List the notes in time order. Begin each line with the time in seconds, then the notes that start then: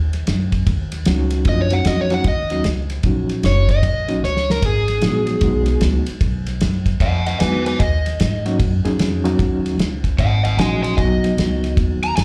Already playing: D#2
0.13 snare, ride
0.27 F#2, snare, ride
0.52 kick, snare, ride
0.67 D#2, kick, snare, ride
0.92 snare, ride
1.05 C#2 F#3 A#3 C#4 D#4 F#4, snare, ride
1.30 snare, ride
1.45 F#2 F3 A3 C4 D4 F4, kick, snare, ride
1.49 D#5
1.61 C#5
1.70 F#3 A#3 C#4 D#4 F#4 F#5, snare, ride
1.85 F2 D#5, snare, ride
2.01 C#5
2.10 F#3 A#3 C#4 D#4 F#4 F#5, snare, ride
2.24 D#2 D#5, kick, snare, ride
2.50 F#3 A#3 C#4 D#4 F#4, snare, ride
2.64 C#2, snare, ride
2.90 snare, ride
3.03 A#1 F#3 A#3 C#4 D#4 F#4, kick, snare, ride
3.29 snare, ride
3.43 F#1 C#5, snare, ride
3.69 D#5, kick, snare, ride
3.83 A#1, kick, snare, ride
4.08 F#3 A#3 C#4 D#4 F#4, snare, ride
4.23 C#2 C#5, snare
4.37 snare
4.50 A#4, snare
4.62 G#1 G#4, kick, snare, ride
4.88 snare, ride
5.01 A#1 F#3 G#3 B3 D#4 F#4, snare, ride
5.27 snare, ride
5.41 B1 F#3 G#3 B3 D#4 F#4, kick, snare, ride
5.66 snare, ride
5.81 C#2, snare, ride
6.06 muted upright bass stroke, snare, ride
6.21 B1, kick, snare, ride
6.46 snare, ride
6.61 F#2, snare, ride
6.86 kick, snare, ride
7.00 F2 D#5 F#5, kick, snare, ride
7.26 D#5 F#5, snare, ride
7.40 E2 F#3 G#3 B3 D#4 F#4 B4 G#5, snare, ride
7.66 B4 G#5, snare, ride
7.79 D#2 D#5, kick, snare, ride
8.06 snare, ride
8.20 G#2, snare, ride
8.46 F#3 A#3 C#4 D#4 F#4, snare, ride
8.59 F#2, kick, snare, ride
8.85 F#3 A#3 C#4 D#4 G#4, muted upright bass stroke, snare, ride
8.98 F2, snare, ride
9.24 F#3 A#3 C#4 D#4 F#4, snare, ride
9.39 D#2, kick, snare, ride
9.66 snare, ride
9.78 C#2, snare, ride
10.04 kick, snare, ride
10.18 G#1 D#5 F#5, kick, snare, ride
10.44 D#5 F#5, snare, ride
10.57 A#1 F#3 A#3 C#4 D#4 F#4 D#5 G#5, snare, ride
10.83 D#5 G#5, snare, ride
10.97 B1 F#3 A#3 B3 D#4 F#4 D#5, kick, snare, ride
11.24 snare, ride
11.37 C#2, snare, ride
11.64 snare, ride
11.77 D#2, kick, snare, ride
12.03 A#5, snare, ride
12.16 F#2 G#5, snare, ride